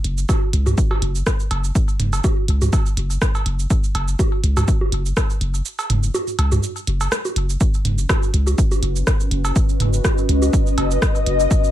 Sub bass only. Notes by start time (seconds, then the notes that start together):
0.05 F#1
0.53 C#2
1.02 F#1
1.51 F#1
2.00 F#1
2.48 C#2
2.97 F#1
3.46 F#1
3.95 F#1
4.43 C#2
4.92 F#1
5.41 F#1
5.90 F#1
6.39 C#2
6.87 F#1
7.36 F#1
7.85 F#1
8.34 C#2
8.83 F#1
9.31 F#1
9.80 F#1
10.29 C#2
10.78 F#1
11.27 F#1